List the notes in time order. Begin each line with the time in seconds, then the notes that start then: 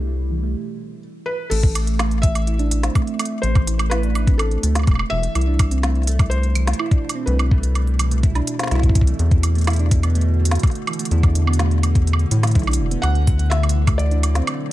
Already playing: C2 B2 C3 G3 E4 G4 C5
0.07 A3
0.31 E3
0.43 A3
1.26 B4
1.50 A1 A3 A4, closed hi-hat, crash
1.63 kick, closed hi-hat
1.71 A3
1.75 A3, closed hi-hat, high woodblock
1.87 closed hi-hat
1.99 A3, snare, closed hi-hat, high woodblock
2.11 closed hi-hat
2.22 E3 E5, kick, closed hi-hat
2.35 A3, closed hi-hat, high woodblock
2.47 E4, closed hi-hat
2.59 D4, closed hi-hat
2.71 closed hi-hat
2.83 C4, snare, closed hi-hat
2.95 A3, kick, closed hi-hat, high woodblock
3.07 closed hi-hat
3.19 A3, closed hi-hat, high woodblock
3.25 closed hi-hat
3.42 A1 A3 C5, closed hi-hat
3.55 kick, closed hi-hat, high woodblock
3.67 E3, closed hi-hat
3.79 A3, closed hi-hat, high woodblock
3.90 E4 B4, snare, closed hi-hat
4.03 D4, closed hi-hat
4.15 closed hi-hat, high woodblock
4.27 C4, kick, closed hi-hat
4.38 A3 A4, closed hi-hat, high woodblock
4.51 closed hi-hat
4.63 D2 A3, closed hi-hat
4.75 snare, closed hi-hat, high woodblock
4.79 high woodblock
4.83 E1, kick, closed hi-hat, high woodblock
4.87 A3, high woodblock
4.91 high woodblock
4.95 high woodblock
4.99 high woodblock
5.10 E1 E3 E5
5.23 A3, closed hi-hat
5.35 C2 E4, closed hi-hat, high woodblock
5.41 closed hi-hat
5.47 D4
5.59 kick, closed hi-hat, high woodblock
5.71 C4, closed hi-hat
5.83 A3, snare, closed hi-hat
5.90 B2
5.95 closed hi-hat
6.03 closed hi-hat
6.07 A3, closed hi-hat
6.19 kick, closed hi-hat, high woodblock
6.30 A3 C5, closed hi-hat
6.43 closed hi-hat
6.55 E3, closed hi-hat, high woodblock
6.67 A3, snare, closed hi-hat
6.73 closed hi-hat
6.79 E4, high woodblock
6.91 D4, kick, closed hi-hat
7.09 closed hi-hat, high woodblock
7.15 C4
7.26 C2 A3 B4, closed hi-hat
7.39 closed hi-hat, high woodblock
7.51 A3, kick
7.63 closed hi-hat
7.75 A3, closed hi-hat, high woodblock
7.87 closed hi-hat
7.99 E3, closed hi-hat, high woodblock
8.11 A3, closed hi-hat
8.23 E4, kick, closed hi-hat
8.35 D4, closed hi-hat, high woodblock
8.47 closed hi-hat
8.59 C4, snare, closed hi-hat
8.63 snare
8.67 C2 E4, snare
8.71 snare, closed hi-hat
8.75 snare
8.79 snare
8.83 kick, closed hi-hat
8.89 kick
8.95 E3, kick, closed hi-hat
9.01 kick
9.07 A3, closed hi-hat
9.19 E2 D3 A3, closed hi-hat
9.31 kick, closed hi-hat
9.43 E3, closed hi-hat, high woodblock
9.55 A3, closed hi-hat
9.58 closed hi-hat
9.61 closed hi-hat
9.64 snare, closed hi-hat
9.67 E4, closed hi-hat, high woodblock
9.70 closed hi-hat
9.73 closed hi-hat
9.76 closed hi-hat
9.79 D4, closed hi-hat
9.91 kick, closed hi-hat
10.03 B3, closed hi-hat, high woodblock
10.15 A3, closed hi-hat
10.21 closed hi-hat
10.39 A3
10.45 closed hi-hat
10.51 snare, closed hi-hat
10.55 closed hi-hat
10.59 kick, closed hi-hat
10.63 A3, closed hi-hat, high woodblock
10.67 closed hi-hat
10.71 closed hi-hat
10.75 closed hi-hat
10.87 E3, closed hi-hat, high woodblock
10.93 closed hi-hat
10.99 A3, closed hi-hat
11.05 closed hi-hat
11.11 E2 E4, closed hi-hat
11.23 D4, kick, closed hi-hat, high woodblock
11.35 closed hi-hat
11.47 B3, high woodblock
11.53 closed hi-hat
11.59 A3, snare, closed hi-hat
11.71 closed hi-hat
11.83 A3, closed hi-hat, high woodblock
11.95 kick, closed hi-hat
12.07 A3, closed hi-hat
12.13 high woodblock
12.19 closed hi-hat
12.31 A2 E3, closed hi-hat
12.43 A3, snare, closed hi-hat, high woodblock
12.47 closed hi-hat
12.51 closed hi-hat
12.55 B1 E4, kick, closed hi-hat
12.59 closed hi-hat
12.63 closed hi-hat
12.67 D4, closed hi-hat, high woodblock
12.71 closed hi-hat
12.73 closed hi-hat
12.75 E1, closed hi-hat
12.91 B3, closed hi-hat
13.02 D2 A3 F#5, closed hi-hat, high woodblock
13.15 closed hi-hat
13.27 F#3 A3, kick, closed hi-hat
13.39 closed hi-hat
13.50 A3 E5, snare, closed hi-hat
13.63 closed hi-hat, high woodblock
13.69 closed hi-hat
13.75 E3 A3
13.87 A3, kick, closed hi-hat, high woodblock
13.98 E4 D5, closed hi-hat
14.11 D4, closed hi-hat
14.23 closed hi-hat, high woodblock
14.35 C4, snare, closed hi-hat
14.47 A3, closed hi-hat, high woodblock
14.58 F#4